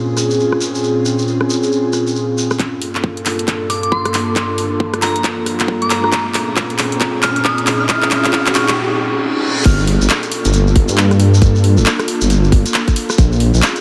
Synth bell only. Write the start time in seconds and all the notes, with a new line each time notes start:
3.70 D6
3.83 D6
3.92 C6
5.02 A#5
5.82 D6
5.90 A#5
6.04 A#5
7.23 F6
7.36 F6
7.45 D#6
7.80 F6
8.55 C#6
9.66 F6